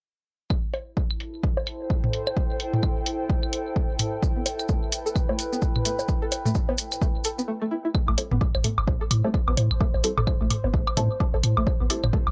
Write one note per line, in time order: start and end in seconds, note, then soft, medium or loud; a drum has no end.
0.50 7.48 E4 medium
0.50 kick loud
0.50 claves medium
0.74 open hi-hat medium
0.74 low bongo soft
0.92 7.48 A4 medium
0.97 kick medium
1.11 claves medium
1.20 open hi-hat medium
1.25 4.57 C5 medium
1.43 7.48 G5 medium
1.43 kick loud
1.57 low bongo medium
1.67 open hi-hat medium
1.67 claves medium
1.90 kick loud
2.04 mid tom medium
2.13 open hi-hat medium
2.27 low bongo medium
2.27 claves medium
2.36 kick loud
2.60 open hi-hat medium
2.73 mid tom medium
2.83 kick loud
2.83 claves medium
3.06 open hi-hat medium
3.29 kick loud
3.43 claves medium
3.53 open hi-hat medium
3.76 kick loud
3.99 mid tom medium
3.99 open hi-hat medium
3.99 claves medium
4.23 kick loud
4.23 maracas soft
4.36 4.41 B3 medium
4.42 7.48 B4 medium
4.42 low bongo medium
4.46 open hi-hat medium
4.46 maracas medium
4.59 claves medium
4.59 maracas medium
4.69 4.71 A3 medium
4.69 kick loud
4.69 maracas soft
4.92 open hi-hat medium
4.92 maracas medium
5.06 5.08 A4 medium
5.06 maracas medium
5.16 kick loud
5.16 claves medium
5.16 maracas soft
5.29 5.34 A3 medium
5.29 low bongo medium
5.39 open hi-hat medium
5.39 maracas medium
5.52 5.57 B3 medium
5.52 maracas medium
5.62 kick loud
5.62 maracas soft
5.76 mid tom medium
5.76 claves medium
5.85 5.88 A3 medium
5.85 open hi-hat loud
5.85 maracas medium
5.99 low bongo medium
5.99 maracas medium
6.08 kick loud
6.08 maracas soft
6.22 6.24 A4 medium
6.32 open hi-hat medium
6.32 low bongo medium
6.32 claves medium
6.32 maracas medium
6.45 6.50 A3 medium
6.45 mid tom medium
6.45 maracas medium
6.55 kick loud
6.55 maracas soft
6.69 6.73 B3 medium
6.69 low bongo medium
6.78 open hi-hat medium
6.78 maracas medium
6.92 claves medium
6.92 maracas medium
7.02 7.04 A3 medium
7.02 kick loud
7.02 maracas soft
7.24 7.29 A4 medium
7.24 open hi-hat medium
7.24 maracas medium
7.38 7.40 B3 medium
7.38 maracas medium
7.48 7.51 A3 medium
7.62 7.64 A3 loud
7.71 7.74 E4 medium
7.85 7.87 E4 medium
7.95 kick loud
7.95 claves medium
8.08 8.16 A1 loud
8.08 8.13 A3 medium
8.08 high woodblock medium
8.18 8.30 G3 medium
8.18 8.30 C4 medium
8.18 8.30 E4 medium
8.18 8.30 A4 medium
8.18 open hi-hat medium
8.18 low bongo soft
8.31 8.40 G1 medium
8.31 8.36 B3 medium
8.31 mid tom medium
8.41 kick loud
8.41 high woodblock soft
8.55 8.63 A1 medium
8.55 low bongo soft
8.55 claves medium
8.64 8.67 A3 medium
8.64 mid tom medium
8.64 open hi-hat medium
8.78 8.86 G1 medium
8.78 12.31 C5 medium
8.78 high woodblock medium
8.88 8.99 A1 loud
8.88 kick loud
8.88 low bongo soft
9.01 9.03 A4 medium
9.11 9.22 A2 loud
9.11 open hi-hat medium
9.11 claves medium
9.11 high woodblock soft
9.24 9.30 G3 medium
9.24 9.29 A3 medium
9.24 9.30 C4 medium
9.24 9.30 E4 medium
9.24 9.30 A4 medium
9.24 low bongo soft
9.34 kick loud
9.48 9.56 A1 medium
9.48 9.52 B3 medium
9.48 high woodblock medium
9.57 9.69 A2 medium
9.57 open hi-hat medium
9.57 low bongo soft
9.71 9.79 A1 medium
9.71 claves medium
9.81 9.83 A3 medium
9.81 kick loud
9.81 high woodblock soft
9.94 10.02 A1 loud
9.94 low bongo soft
10.04 10.12 G3 medium
10.04 10.12 C4 medium
10.04 10.12 E4 medium
10.04 10.12 A4 loud
10.04 open hi-hat medium
10.17 10.26 G1 medium
10.17 10.20 A4 medium
10.17 mid tom loud
10.17 high woodblock medium
10.27 kick loud
10.27 low bongo soft
10.27 claves medium
10.41 10.49 A1 medium
10.41 10.45 A3 medium
10.50 mid tom medium
10.50 open hi-hat medium
10.50 high woodblock soft
10.64 10.72 G1 medium
10.64 10.68 B3 medium
10.64 low bongo soft
10.74 10.85 A1 loud
10.74 kick loud
10.87 claves medium
10.87 high woodblock medium
10.97 11.08 A2 loud
10.97 11.05 G3 loud
10.97 10.99 A3 medium
10.97 11.05 C4 medium
10.97 11.05 E4 medium
10.97 11.05 A4 loud
10.97 mid tom medium
10.97 open hi-hat medium
10.97 low bongo soft
11.20 kick loud
11.20 high woodblock soft
11.34 11.42 A1 medium
11.34 11.36 A4 medium
11.34 low bongo soft
11.43 11.55 A2 loud
11.43 open hi-hat loud
11.43 claves medium
11.57 11.65 A1 medium
11.57 11.61 A3 medium
11.57 high woodblock medium
11.67 kick loud
11.67 low bongo soft
11.80 11.88 A1 loud
11.80 11.85 B3 medium
11.90 12.02 G3 medium
11.90 12.02 C4 medium
11.90 12.02 E4 medium
11.90 12.02 A4 medium
11.90 open hi-hat medium
11.90 high woodblock soft
12.04 12.12 G1 medium
12.04 mid tom medium
12.04 low bongo soft
12.04 claves medium
12.13 12.16 A3 medium
12.13 kick loud
12.27 12.31 A1 medium
12.27 high woodblock medium